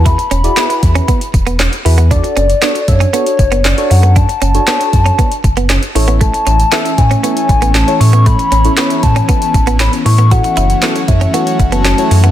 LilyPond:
<<
  \new Staff \with { instrumentName = "Soft synth lead" } { \time 4/4 \key a \major \tempo 4 = 117 b''2.~ b''8 r8 | d''4~ d''16. d''32 cis''8 cis''4 d''8 fis''8 | a''2.~ a''8 r8 | a''4. gis''8 gis''4 a''8 cis'''8 |
b''4. a''8 a''4 b''8 cis'''8 | fis''4. e''8 fis''8. a''4 fis''16 | }
  \new Staff \with { instrumentName = "Synth keys" } { \time 4/4 \key a \major <e' fis' gis' b'>16 r8 <e' fis' gis' d''>16 <e' fis' gis' b'>4~ <e' fis' gis' b'>16 r4 r16 <e' fis' gis' b'>16 r16 | <d' fis' a' d''>8. r16 <d' fis' a' cis''>16 r16 <d' fis' a' e''>16 r16 <d' fis' a' cis''>8. r8 <d' fis' a' cis''>8.~ | <d' fis' a' cis''>16 r8 <d' fis' a' cis''>16 <d' fis' cis''>4~ <d' fis' cis''>16 r4 r16 <cis' e' a' cis''>8~ | <cis' e' a' cis''>8. r16 <cis' e' a' e''>16 r16 <cis' e' a' cis''>16 r16 <cis' e' a' cis''>8. r8 <cis' e' a' cis''>8.~ |
<cis' e' a' cis''>16 r8 <cis' e' a' cis''>16 <cis' e' a' cis''>4~ <cis' e' a' cis''>16 r4 r16 <cis' e' a' cis''>16 r16 | <e' fis' a' cis''>8. r16 <e' fis' a' cis''>16 r16 <e' fis' a' cis''>16 r16 <e' fis' a' cis''>8. r8 <e' fis' a' cis''>8. | }
  \new Staff \with { instrumentName = "Clean electric guitar" } { \time 4/4 \key a \major e'16 r16 cis'16 r16 b16 r8 cis'16 b16 r8 b16 cis'16 r8 b16 | d'16 r16 cis'16 r16 b16 r8 cis'16 b16 r8 b16 cis'16 r8 b16 | d'16 r16 cis'16 r16 b16 r8 cis'16 b16 r8 b16 cis'16 r8 b16 | a16 r16 cis'16 r16 b16 r8 cis'16 b16 r8 b16 cis'16 r8 b16 |
a16 r16 cis'16 r16 b16 r8 cis'16 b16 r8 b16 cis'16 r8 b16 | fis'16 r16 e'16 r16 b16 r8 cis'16 b16 r8 b16 cis'16 r8 b16 | }
  \new Staff \with { instrumentName = "Analog synth pad" } { \time 4/4 \key a \major << { r1 | r1 | r1 | <e cis'>1~ |
<e cis'>1 | <fis a fis'>1 | } \\ { r1 | r1 | r1 | a1 |
b1 | cis'1 | } >> }
  \new Staff \with { instrumentName = "Sub bass" } { \clef bass \time 4/4 \key a \major e,8 e,,8 r8 e,8 r8 e,,4 e,8~ | e,8 fis,,8 r8 fis,8 r8 fis,,4 fis,8~ | fis,8 fis,,8 r8 fis,8 r8 fis,,4 a,,8~ | a,,8 a,,8 r8 a,8 r8 a,,4 a,8~ |
a,8 a,,8 r8 a,8 r8 a,,4 a,8~ | a,8 fis,,8 r8 fis,8 r8 fis,,4 fis,8 | }
  \new DrumStaff \with { instrumentName = "Drums" } \drummode { \time 4/4 <hh bd>16 hh16 hh16 hh16 <hc hh sn>16 hh16 <hh bd>16 hh16 <hh bd>16 hh16 <hh bd>16 hh16 <hc hh sn>16 hh16 hho16 hh16 | <hh bd>16 hh16 hh16 hh16 <hc hh sn>16 hh16 <hh bd>16 hh16 hh16 hh16 <hh bd>16 hh16 <hc hh sn>16 hh16 hho16 hh16 | <hh bd>16 hh16 hh16 hh16 <hc hh sn>16 hh16 <hh bd>16 hh16 <hh bd>16 hh16 <hh bd>16 hh16 <hc hh sn>16 hh16 hho16 hh16 | <hh bd>16 hh16 hh16 hh16 <hc hh sn>16 hh16 <hh bd>16 hh16 hh16 hh16 <hh bd>16 hh16 <hc hh sn>16 hh16 hho16 hh16 |
<hh bd>16 hh16 hh16 hh16 <hc hh sn>16 hh16 <hh bd>16 hh16 <hh bd>16 hh16 <hh bd>16 hh16 <hc hh sn>16 hh16 hho16 hh16 | <hh bd>16 hh16 hh16 hh16 <hc hh sn>16 hh16 <hh bd>16 hh16 hh16 hh16 <hh bd>16 hh16 <hc hh sn>16 hh16 hho16 hh16 | }
>>